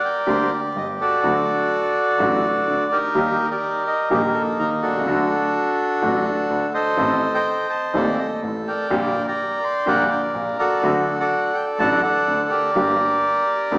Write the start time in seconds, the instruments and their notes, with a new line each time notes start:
Already playing: bandoneon A#4 D5
0.05 bandoneon G5
0.27 grand piano D2 D3 G3 A#3 G4, double bass D2, bandoneon G4 C5
0.53 bandoneon D5
0.75 double bass G1, grand piano G1 G2, bandoneon D#5
1.01 bandoneon F#4 A4 D5
1.23 double bass D2, grand piano D2 D3 F#3 A3 F#4
2.19 double bass A1, grand piano A1 A2 D3 F#3 A3 F#4
2.67 double bass D2, grand piano D2 D3
2.92 bandoneon D#4 G4 A#4
3.15 grand piano D#2 D#3 G3 A#3 G4, double bass D#2
3.51 bandoneon G4 A#4 D5
3.87 bandoneon D#5
4.10 double bass A#1, grand piano A#1 A#2 D#3 G3 A#3 G4, bandoneon A#3 D#4 G4
4.34 bandoneon A4
4.59 double bass D#2, grand piano D#2 D#3, bandoneon A#4
4.82 double bass C2, bandoneon D4 F#4 A4
4.89 grand piano B1
4.94 grand piano C2
5.01 grand piano C#2
5.06 double bass D2, grand piano D2 D3 F#3 A3 F#4
6.02 grand piano A1 A2 D3 F#3 A3 F#4, double bass A1
6.50 double bass D2, grand piano D2 D3
6.74 bandoneon A4 C5 D#5
6.97 grand piano A1 A2 D#3 A3 C4 A4, double bass A1
7.34 bandoneon C5 D#5 G5
7.70 bandoneon A5
7.93 grand piano D#1 D#2 D#3 A3 C4 A4, double bass D#2, bandoneon A4 D5
8.19 bandoneon D#5
8.42 double bass A1, grand piano A1 A2
8.68 bandoneon A#4 D5 G5
8.90 grand piano A#1 A#2 D3 G3 A#3 G4, double bass A#1
9.28 bandoneon D5 G5 A#5
9.64 bandoneon C6
9.86 grand piano A#1 A#2 D3 G3 A#3 G4, double bass A#1, bandoneon A#4 D5 F#5
10.11 bandoneon G5
10.34 double bass A#1, grand piano A#1 A#2
10.59 bandoneon F#4 A4 D5
10.82 double bass D2, grand piano D2 D3 F#3 A3 F#4
11.20 bandoneon A4 D5 F#5
11.54 bandoneon G5
11.79 double bass A1, grand piano A1 A2 D3 F#3 A3 F#4, bandoneon D5 F#5 A5
12.02 bandoneon A4 D5 F#5
12.27 double bass D2, grand piano D2 D3
12.49 bandoneon G4 A#4 D5
12.74 double bass G1, grand piano G1 G2 D3 G3 A#3 G4
13.71 double bass D2, grand piano D2 D3 G3 A#3 G4